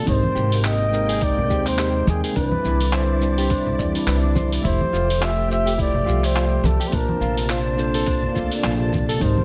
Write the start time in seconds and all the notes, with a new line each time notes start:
Already playing: C3
0.03 G#3 A#3 C4 D#4 G5, open hi-hat
0.07 G#1 G4 A#4 C5, kick, shaker
0.24 high conga
0.35 G#1 G4, shaker
0.52 open hi-hat, shaker
0.64 G4 D#5, clap, shaker
0.91 G#3 C4 D#4 A#4 G5, shaker
1.09 G#4, open hi-hat, shaker
1.21 D#4 D5, kick, open hi-hat, shaker
1.39 low conga
1.47 G#3 C4 D#4 G4, shaker
1.51 D#2 C5 G5, kick
1.66 C5, clap, open hi-hat, shaker
1.79 G4, clap, shaker
2.07 D#2 G#4, high conga, shaker
2.24 G#4, open hi-hat, shaker
2.33 C2 D3 G3 C4 D4 E4 B4 D5, kick, open hi-hat, shaker
2.39 E4 B4
2.52 high conga
2.64 C2 E4, shaker
2.81 open hi-hat, shaker
2.93 E4 C5, clap, open hi-hat, shaker
3.21 G3 C4 D4 E4 C5, shaker
3.38 G4, open hi-hat, shaker
3.50 D4, kick, open hi-hat, shaker
3.67 low conga
3.79 E2 D5, kick, shaker
3.92 G3 C4 D4, open hi-hat, shaker
3.98 E4 D5
4.07 C2 B4, clap, open hi-hat, shaker
4.23 D4
4.35 C5, kick, high conga, shaker
4.52 open hi-hat, shaker
4.61 F1 F3 A3 E4 E5, kick, open hi-hat
4.65 A3 G4 C5, shaker
4.81 high conga
4.92 F1 F4, shaker
5.10 open hi-hat, shaker
5.21 F4 E5, clap, shaker
5.48 A3 F4 G4 C5 E5, shaker
5.52 E5
5.66 G4, open hi-hat, shaker
5.78 E4 D5, kick, open hi-hat, shaker
5.95 low conga
6.03 F3 A3 F4 E5
6.07 C2 G4 D5, kick, shaker
6.24 C5, clap, open hi-hat, shaker
6.35 F4, clap, open hi-hat, shaker
6.64 C2 A4, high conga, shaker
6.80 G4, open hi-hat, shaker
6.87 A#3 D4 C5
6.92 A#1 C3 D4 F4 A#4 A5, kick, open hi-hat, shaker
6.96 C5
7.09 high conga
7.20 A#1 F4, shaker
7.38 open hi-hat, shaker
7.50 F4 C5, clap, open hi-hat, shaker
7.76 A#3 D4 F4 A4 C5, shaker
7.94 A4, open hi-hat, shaker
8.06 D4, kick, open hi-hat, shaker
8.23 low conga
8.32 A#3 D4 F4
8.36 D2 A4 D5, kick, shaker
8.52 open hi-hat, shaker
8.63 A#1 F4, clap, open hi-hat, shaker
8.92 kick, high conga, shaker
9.09 A4, open hi-hat, shaker
9.17 G#1 G#3 A#3 C4 D#4 G5, kick
9.21 G4 A#4 C5, open hi-hat, shaker
9.37 high conga